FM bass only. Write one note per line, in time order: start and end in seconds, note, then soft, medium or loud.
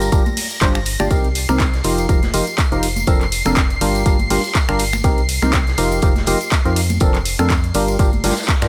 0.00 0.10 G1 loud
0.12 0.21 G1 medium
0.62 0.97 G1 loud
1.00 1.09 G1 loud
1.11 1.46 C2 loud
1.49 1.82 C2 loud
1.84 2.07 F1 loud
2.09 2.32 F1 loud
2.34 2.42 F1 loud
2.72 3.05 F1 medium
3.07 3.43 F1 loud
3.46 3.79 F1 loud
3.81 4.04 G1 loud
4.06 4.28 G1 loud
4.30 4.39 G1 loud
4.69 5.02 G1 loud
5.04 5.40 C2 loud
5.42 5.76 C2 loud
5.78 6.00 F1 loud
6.03 6.25 F1 loud
6.27 6.35 F1 loud
6.65 6.99 F2 loud
7.01 7.36 F1 medium
7.39 7.72 F2 loud
7.75 7.97 G1 loud
7.99 8.22 G1 medium
8.24 8.32 G1 loud
8.62 8.68 G2 loud